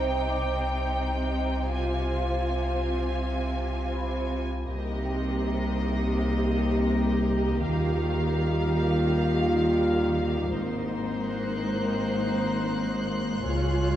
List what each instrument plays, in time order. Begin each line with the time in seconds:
Already playing: sub bass C2, cello section C3, violin section D#4 C5 G5, celesta D6
0.29 celesta D5 D6
1.75 violin section F4 C5 G#5
3.96 celesta C5 B5
4.67 double bass section C2, sub bass C2, cello section C3, french horn section A#3 D#4, viola section G4, violin section A#4 D#5
5.05 celesta G5
7.61 double bass section D#2, sub bass D#2, cello section D#3, french horn section G3 F4, violin section F5
10.53 double bass section G#1, sub bass G#1, cello section G#2, french horn section A#3 C4, viola section D#4, violin section A#4 C5 C6
11.25 violin section F#6
13.45 sub bass C#2, cello section C#2, double bass section C#2, french horn section G#3 F4, viola section F4, violin section G#4 C#5